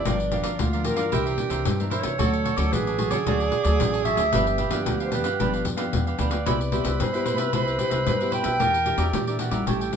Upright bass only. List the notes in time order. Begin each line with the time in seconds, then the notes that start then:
0.06 G1
0.44 G1
0.59 D2
0.97 G2
1.13 C2
1.50 C2
1.66 G2
2.04 C2
2.19 D2
2.57 D2
2.73 A1
3.11 D3
3.26 D2
3.65 D2
3.80 A1
4.18 D2
4.34 G1
4.71 G1
4.87 D2
5.25 G2
5.40 G1
5.66 F2
5.94 E2
6.19 D2
6.47 C2
6.85 C2
7.01 G2
7.38 C3
7.54 C2
7.91 C2
8.07 G2
8.45 B1
8.61 E2
8.98 E2
9.13 A#2
9.51 A#1
9.67 A1